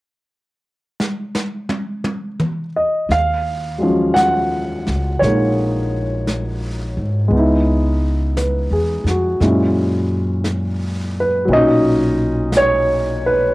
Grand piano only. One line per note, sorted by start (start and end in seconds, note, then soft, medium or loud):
2.76 3.12 D#5 soft
3.12 4.13 F5 medium
3.78 7.31 F#3 soft
3.78 5.22 G#3 soft
3.78 7.33 C#4 soft
3.83 7.33 F3 soft
4.14 5.24 F#5 medium
5.19 7.27 G#3 soft
5.19 6.92 C#5 medium
5.24 7.33 A#3 soft
5.24 7.34 D#4 soft
7.28 9.39 G#3 soft
7.28 9.41 B3 soft
7.36 9.43 D#4 soft
7.36 9.41 E4 soft
8.37 9.03 B4 soft
8.73 9.26 G#4 soft
9.09 9.62 F#4 soft
9.41 11.47 A#2 soft
9.41 11.49 G#3 soft
9.41 11.50 C#4 soft
9.41 11.50 E4 soft
11.20 11.50 B4 medium
11.45 13.54 A#2 soft
11.45 13.54 F#3 medium
11.52 13.54 C#4 soft
11.52 13.54 D#4 medium
11.52 12.51 D#5 medium
12.57 13.27 C#5 medium
13.26 13.54 B4 medium